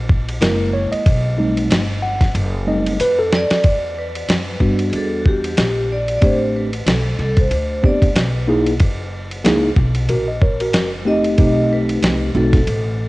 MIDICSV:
0, 0, Header, 1, 6, 480
1, 0, Start_track
1, 0, Tempo, 645161
1, 788, Time_signature, 4, 2, 24, 8
1, 9735, End_track
2, 0, Start_track
2, 0, Title_t, "Vibraphone"
2, 0, Program_c, 0, 11
2, 2492, Note_on_c, 0, 74, 127
2, 2965, Note_on_c, 0, 71, 101
2, 2974, Note_off_c, 0, 74, 0
2, 3645, Note_on_c, 0, 68, 62
2, 3652, Note_off_c, 0, 71, 0
2, 3679, Note_off_c, 0, 68, 0
2, 3689, Note_on_c, 0, 69, 80
2, 3879, Note_off_c, 0, 69, 0
2, 3885, Note_on_c, 0, 66, 56
2, 3919, Note_off_c, 0, 66, 0
2, 3925, Note_on_c, 0, 67, 98
2, 4408, Note_on_c, 0, 74, 105
2, 4410, Note_off_c, 0, 67, 0
2, 4585, Note_off_c, 0, 74, 0
2, 4594, Note_on_c, 0, 74, 76
2, 4633, Note_off_c, 0, 74, 0
2, 4643, Note_on_c, 0, 72, 96
2, 4882, Note_off_c, 0, 72, 0
2, 4883, Note_on_c, 0, 71, 82
2, 5099, Note_off_c, 0, 71, 0
2, 5127, Note_on_c, 0, 69, 76
2, 5341, Note_off_c, 0, 69, 0
2, 5366, Note_on_c, 0, 69, 82
2, 5498, Note_off_c, 0, 69, 0
2, 5499, Note_on_c, 0, 72, 71
2, 5811, Note_off_c, 0, 72, 0
2, 5843, Note_on_c, 0, 74, 87
2, 6081, Note_on_c, 0, 71, 79
2, 6082, Note_off_c, 0, 74, 0
2, 6426, Note_off_c, 0, 71, 0
2, 8240, Note_on_c, 0, 75, 105
2, 8725, Note_on_c, 0, 71, 89
2, 8728, Note_off_c, 0, 75, 0
2, 9204, Note_on_c, 0, 69, 75
2, 9210, Note_off_c, 0, 71, 0
2, 9735, Note_off_c, 0, 69, 0
2, 9735, End_track
3, 0, Start_track
3, 0, Title_t, "Tine electric piano"
3, 0, Program_c, 1, 4
3, 303, Note_on_c, 1, 56, 55
3, 307, Note_on_c, 1, 58, 53
3, 310, Note_on_c, 1, 70, 77
3, 312, Note_on_c, 1, 64, 59
3, 547, Note_on_c, 1, 73, 85
3, 556, Note_off_c, 1, 70, 0
3, 683, Note_on_c, 1, 75, 96
3, 689, Note_off_c, 1, 73, 0
3, 761, Note_off_c, 1, 56, 0
3, 763, Note_off_c, 1, 58, 0
3, 766, Note_off_c, 1, 64, 0
3, 1023, Note_on_c, 1, 55, 50
3, 1026, Note_on_c, 1, 57, 50
3, 1029, Note_on_c, 1, 60, 49
3, 1032, Note_on_c, 1, 63, 65
3, 1358, Note_off_c, 1, 55, 0
3, 1359, Note_off_c, 1, 57, 0
3, 1361, Note_off_c, 1, 60, 0
3, 1362, Note_off_c, 1, 63, 0
3, 1507, Note_on_c, 1, 78, 96
3, 1531, Note_off_c, 1, 75, 0
3, 1730, Note_off_c, 1, 78, 0
3, 1985, Note_on_c, 1, 55, 50
3, 1987, Note_on_c, 1, 57, 44
3, 1988, Note_on_c, 1, 60, 49
3, 1990, Note_on_c, 1, 63, 52
3, 1991, Note_on_c, 1, 75, 88
3, 2202, Note_off_c, 1, 55, 0
3, 2203, Note_off_c, 1, 57, 0
3, 2204, Note_off_c, 1, 60, 0
3, 2205, Note_off_c, 1, 63, 0
3, 2237, Note_off_c, 1, 75, 0
3, 2237, Note_on_c, 1, 71, 100
3, 2371, Note_on_c, 1, 69, 92
3, 2374, Note_off_c, 1, 71, 0
3, 2687, Note_off_c, 1, 69, 0
3, 3424, Note_on_c, 1, 55, 52
3, 3428, Note_on_c, 1, 59, 52
3, 3430, Note_on_c, 1, 62, 56
3, 3434, Note_on_c, 1, 66, 62
3, 4105, Note_off_c, 1, 55, 0
3, 4107, Note_off_c, 1, 59, 0
3, 4108, Note_off_c, 1, 62, 0
3, 4110, Note_off_c, 1, 66, 0
3, 4623, Note_on_c, 1, 57, 59
3, 4626, Note_on_c, 1, 60, 55
3, 4630, Note_on_c, 1, 62, 58
3, 4635, Note_on_c, 1, 67, 72
3, 4975, Note_off_c, 1, 57, 0
3, 4977, Note_off_c, 1, 60, 0
3, 4979, Note_off_c, 1, 62, 0
3, 4981, Note_off_c, 1, 67, 0
3, 5826, Note_on_c, 1, 59, 60
3, 5829, Note_on_c, 1, 60, 48
3, 5832, Note_on_c, 1, 62, 54
3, 5836, Note_on_c, 1, 67, 66
3, 6005, Note_off_c, 1, 59, 0
3, 6006, Note_off_c, 1, 60, 0
3, 6008, Note_off_c, 1, 62, 0
3, 6010, Note_off_c, 1, 67, 0
3, 6305, Note_on_c, 1, 58, 69
3, 6309, Note_on_c, 1, 63, 71
3, 6314, Note_on_c, 1, 64, 73
3, 6317, Note_on_c, 1, 68, 86
3, 6485, Note_off_c, 1, 58, 0
3, 6487, Note_off_c, 1, 63, 0
3, 6489, Note_off_c, 1, 64, 0
3, 6491, Note_off_c, 1, 68, 0
3, 7025, Note_on_c, 1, 58, 81
3, 7027, Note_on_c, 1, 63, 77
3, 7030, Note_on_c, 1, 64, 70
3, 7035, Note_on_c, 1, 68, 87
3, 7205, Note_off_c, 1, 58, 0
3, 7206, Note_off_c, 1, 63, 0
3, 7207, Note_off_c, 1, 64, 0
3, 7210, Note_off_c, 1, 68, 0
3, 7510, Note_on_c, 1, 70, 66
3, 7514, Note_on_c, 1, 66, 60
3, 7639, Note_off_c, 1, 70, 0
3, 7642, Note_off_c, 1, 66, 0
3, 7648, Note_on_c, 1, 75, 66
3, 7744, Note_off_c, 1, 75, 0
3, 7752, Note_on_c, 1, 73, 62
3, 7756, Note_on_c, 1, 70, 54
3, 7880, Note_off_c, 1, 73, 0
3, 7883, Note_off_c, 1, 70, 0
3, 7891, Note_on_c, 1, 70, 58
3, 7896, Note_on_c, 1, 66, 61
3, 8116, Note_off_c, 1, 70, 0
3, 8119, Note_off_c, 1, 66, 0
3, 8223, Note_on_c, 1, 57, 67
3, 8227, Note_on_c, 1, 60, 64
3, 8230, Note_on_c, 1, 63, 62
3, 8234, Note_on_c, 1, 67, 78
3, 8458, Note_off_c, 1, 57, 0
3, 8461, Note_off_c, 1, 60, 0
3, 8466, Note_off_c, 1, 63, 0
3, 8467, Note_off_c, 1, 67, 0
3, 8467, Note_on_c, 1, 57, 58
3, 8470, Note_on_c, 1, 60, 55
3, 8475, Note_on_c, 1, 63, 57
3, 8476, Note_on_c, 1, 67, 67
3, 9146, Note_off_c, 1, 57, 0
3, 9147, Note_off_c, 1, 60, 0
3, 9150, Note_off_c, 1, 63, 0
3, 9151, Note_off_c, 1, 67, 0
3, 9185, Note_on_c, 1, 57, 65
3, 9189, Note_on_c, 1, 60, 66
3, 9192, Note_on_c, 1, 63, 63
3, 9195, Note_on_c, 1, 66, 67
3, 9365, Note_off_c, 1, 57, 0
3, 9367, Note_off_c, 1, 60, 0
3, 9368, Note_off_c, 1, 63, 0
3, 9370, Note_off_c, 1, 66, 0
3, 9735, End_track
4, 0, Start_track
4, 0, Title_t, "Upright bass"
4, 0, Program_c, 2, 32
4, 0, Note_on_c, 2, 34, 98
4, 282, Note_off_c, 2, 34, 0
4, 304, Note_on_c, 2, 30, 101
4, 664, Note_off_c, 2, 30, 0
4, 790, Note_on_c, 2, 35, 99
4, 1245, Note_off_c, 2, 35, 0
4, 1266, Note_on_c, 2, 31, 89
4, 1723, Note_off_c, 2, 31, 0
4, 1746, Note_on_c, 2, 30, 111
4, 2203, Note_off_c, 2, 30, 0
4, 2226, Note_on_c, 2, 41, 92
4, 2585, Note_off_c, 2, 41, 0
4, 2710, Note_on_c, 2, 40, 71
4, 3165, Note_off_c, 2, 40, 0
4, 3189, Note_on_c, 2, 42, 75
4, 3416, Note_off_c, 2, 42, 0
4, 3425, Note_on_c, 2, 43, 100
4, 3654, Note_off_c, 2, 43, 0
4, 3667, Note_on_c, 2, 40, 92
4, 4123, Note_off_c, 2, 40, 0
4, 4150, Note_on_c, 2, 34, 98
4, 4605, Note_off_c, 2, 34, 0
4, 4629, Note_on_c, 2, 33, 86
4, 5084, Note_off_c, 2, 33, 0
4, 5106, Note_on_c, 2, 35, 87
4, 5335, Note_off_c, 2, 35, 0
4, 5348, Note_on_c, 2, 36, 102
4, 5576, Note_off_c, 2, 36, 0
4, 5587, Note_on_c, 2, 38, 94
4, 6043, Note_off_c, 2, 38, 0
4, 6067, Note_on_c, 2, 35, 98
4, 6523, Note_off_c, 2, 35, 0
4, 6549, Note_on_c, 2, 30, 91
4, 7004, Note_off_c, 2, 30, 0
4, 7028, Note_on_c, 2, 37, 94
4, 7256, Note_off_c, 2, 37, 0
4, 7264, Note_on_c, 2, 35, 108
4, 7494, Note_off_c, 2, 35, 0
4, 7508, Note_on_c, 2, 34, 102
4, 7987, Note_off_c, 2, 34, 0
4, 7987, Note_on_c, 2, 30, 97
4, 8443, Note_off_c, 2, 30, 0
4, 8468, Note_on_c, 2, 35, 89
4, 8924, Note_off_c, 2, 35, 0
4, 8944, Note_on_c, 2, 36, 81
4, 9174, Note_off_c, 2, 36, 0
4, 9185, Note_on_c, 2, 35, 111
4, 9414, Note_off_c, 2, 35, 0
4, 9426, Note_on_c, 2, 33, 105
4, 9735, Note_off_c, 2, 33, 0
4, 9735, End_track
5, 0, Start_track
5, 0, Title_t, "Muted upright bass strokes"
5, 684, Note_on_c, 9, 29, 39
5, 758, Note_off_c, 9, 29, 0
5, 2608, Note_on_c, 9, 29, 42
5, 2682, Note_off_c, 9, 29, 0
5, 9735, End_track
6, 0, Start_track
6, 0, Title_t, "Drums"
6, 70, Note_on_c, 9, 36, 92
6, 144, Note_off_c, 9, 36, 0
6, 213, Note_on_c, 9, 51, 64
6, 287, Note_off_c, 9, 51, 0
6, 310, Note_on_c, 9, 44, 57
6, 310, Note_on_c, 9, 51, 77
6, 316, Note_on_c, 9, 38, 108
6, 385, Note_off_c, 9, 44, 0
6, 385, Note_off_c, 9, 51, 0
6, 390, Note_off_c, 9, 38, 0
6, 688, Note_on_c, 9, 51, 54
6, 763, Note_off_c, 9, 51, 0
6, 789, Note_on_c, 9, 36, 109
6, 789, Note_on_c, 9, 51, 82
6, 863, Note_off_c, 9, 51, 0
6, 864, Note_off_c, 9, 36, 0
6, 1170, Note_on_c, 9, 51, 61
6, 1244, Note_off_c, 9, 51, 0
6, 1270, Note_on_c, 9, 44, 47
6, 1270, Note_on_c, 9, 51, 62
6, 1279, Note_on_c, 9, 38, 127
6, 1344, Note_off_c, 9, 44, 0
6, 1344, Note_off_c, 9, 51, 0
6, 1353, Note_off_c, 9, 38, 0
6, 1643, Note_on_c, 9, 36, 83
6, 1644, Note_on_c, 9, 51, 62
6, 1653, Note_on_c, 9, 38, 32
6, 1717, Note_off_c, 9, 36, 0
6, 1718, Note_off_c, 9, 51, 0
6, 1727, Note_off_c, 9, 38, 0
6, 1748, Note_on_c, 9, 51, 69
6, 1823, Note_off_c, 9, 51, 0
6, 2131, Note_on_c, 9, 51, 68
6, 2205, Note_off_c, 9, 51, 0
6, 2230, Note_on_c, 9, 44, 57
6, 2230, Note_on_c, 9, 51, 82
6, 2305, Note_off_c, 9, 44, 0
6, 2305, Note_off_c, 9, 51, 0
6, 2474, Note_on_c, 9, 38, 99
6, 2548, Note_off_c, 9, 38, 0
6, 2607, Note_on_c, 9, 51, 64
6, 2611, Note_on_c, 9, 38, 94
6, 2681, Note_off_c, 9, 51, 0
6, 2685, Note_off_c, 9, 38, 0
6, 2706, Note_on_c, 9, 51, 75
6, 2709, Note_on_c, 9, 36, 101
6, 2781, Note_off_c, 9, 51, 0
6, 2784, Note_off_c, 9, 36, 0
6, 3090, Note_on_c, 9, 51, 58
6, 3164, Note_off_c, 9, 51, 0
6, 3189, Note_on_c, 9, 44, 43
6, 3189, Note_on_c, 9, 51, 60
6, 3198, Note_on_c, 9, 38, 126
6, 3263, Note_off_c, 9, 44, 0
6, 3263, Note_off_c, 9, 51, 0
6, 3272, Note_off_c, 9, 38, 0
6, 3424, Note_on_c, 9, 36, 81
6, 3499, Note_off_c, 9, 36, 0
6, 3563, Note_on_c, 9, 51, 57
6, 3637, Note_off_c, 9, 51, 0
6, 3667, Note_on_c, 9, 51, 67
6, 3741, Note_off_c, 9, 51, 0
6, 3911, Note_on_c, 9, 36, 83
6, 3985, Note_off_c, 9, 36, 0
6, 4049, Note_on_c, 9, 51, 62
6, 4123, Note_off_c, 9, 51, 0
6, 4146, Note_on_c, 9, 44, 55
6, 4146, Note_on_c, 9, 51, 76
6, 4151, Note_on_c, 9, 38, 112
6, 4220, Note_off_c, 9, 44, 0
6, 4220, Note_off_c, 9, 51, 0
6, 4226, Note_off_c, 9, 38, 0
6, 4525, Note_on_c, 9, 51, 57
6, 4599, Note_off_c, 9, 51, 0
6, 4626, Note_on_c, 9, 51, 64
6, 4629, Note_on_c, 9, 36, 98
6, 4700, Note_off_c, 9, 51, 0
6, 4703, Note_off_c, 9, 36, 0
6, 5007, Note_on_c, 9, 51, 61
6, 5082, Note_off_c, 9, 51, 0
6, 5108, Note_on_c, 9, 44, 44
6, 5108, Note_on_c, 9, 51, 62
6, 5117, Note_on_c, 9, 38, 121
6, 5182, Note_off_c, 9, 44, 0
6, 5182, Note_off_c, 9, 51, 0
6, 5192, Note_off_c, 9, 38, 0
6, 5481, Note_on_c, 9, 51, 60
6, 5483, Note_on_c, 9, 36, 86
6, 5556, Note_off_c, 9, 51, 0
6, 5557, Note_off_c, 9, 36, 0
6, 5588, Note_on_c, 9, 51, 67
6, 5662, Note_off_c, 9, 51, 0
6, 5831, Note_on_c, 9, 36, 83
6, 5905, Note_off_c, 9, 36, 0
6, 5966, Note_on_c, 9, 36, 92
6, 5969, Note_on_c, 9, 51, 58
6, 6040, Note_off_c, 9, 36, 0
6, 6043, Note_off_c, 9, 51, 0
6, 6068, Note_on_c, 9, 44, 56
6, 6068, Note_on_c, 9, 51, 82
6, 6073, Note_on_c, 9, 38, 105
6, 6142, Note_off_c, 9, 44, 0
6, 6142, Note_off_c, 9, 51, 0
6, 6147, Note_off_c, 9, 38, 0
6, 6446, Note_on_c, 9, 51, 58
6, 6521, Note_off_c, 9, 51, 0
6, 6545, Note_on_c, 9, 51, 75
6, 6550, Note_on_c, 9, 36, 93
6, 6619, Note_off_c, 9, 51, 0
6, 6624, Note_off_c, 9, 36, 0
6, 6929, Note_on_c, 9, 51, 53
6, 7004, Note_off_c, 9, 51, 0
6, 7029, Note_on_c, 9, 44, 46
6, 7029, Note_on_c, 9, 51, 67
6, 7038, Note_on_c, 9, 38, 126
6, 7103, Note_off_c, 9, 44, 0
6, 7103, Note_off_c, 9, 51, 0
6, 7113, Note_off_c, 9, 38, 0
6, 7264, Note_on_c, 9, 36, 83
6, 7339, Note_off_c, 9, 36, 0
6, 7401, Note_on_c, 9, 51, 59
6, 7475, Note_off_c, 9, 51, 0
6, 7505, Note_on_c, 9, 51, 64
6, 7580, Note_off_c, 9, 51, 0
6, 7750, Note_on_c, 9, 36, 92
6, 7824, Note_off_c, 9, 36, 0
6, 7888, Note_on_c, 9, 51, 64
6, 7962, Note_off_c, 9, 51, 0
6, 7986, Note_on_c, 9, 44, 51
6, 7986, Note_on_c, 9, 51, 71
6, 7991, Note_on_c, 9, 38, 109
6, 8060, Note_off_c, 9, 44, 0
6, 8060, Note_off_c, 9, 51, 0
6, 8065, Note_off_c, 9, 38, 0
6, 8365, Note_on_c, 9, 51, 52
6, 8440, Note_off_c, 9, 51, 0
6, 8466, Note_on_c, 9, 51, 71
6, 8469, Note_on_c, 9, 36, 93
6, 8540, Note_off_c, 9, 51, 0
6, 8543, Note_off_c, 9, 36, 0
6, 8848, Note_on_c, 9, 51, 55
6, 8923, Note_off_c, 9, 51, 0
6, 8948, Note_on_c, 9, 44, 45
6, 8948, Note_on_c, 9, 51, 69
6, 8957, Note_on_c, 9, 38, 112
6, 9022, Note_off_c, 9, 44, 0
6, 9022, Note_off_c, 9, 51, 0
6, 9032, Note_off_c, 9, 38, 0
6, 9322, Note_on_c, 9, 36, 89
6, 9322, Note_on_c, 9, 51, 60
6, 9331, Note_on_c, 9, 38, 28
6, 9396, Note_off_c, 9, 51, 0
6, 9397, Note_off_c, 9, 36, 0
6, 9406, Note_off_c, 9, 38, 0
6, 9427, Note_on_c, 9, 51, 66
6, 9502, Note_off_c, 9, 51, 0
6, 9735, End_track
0, 0, End_of_file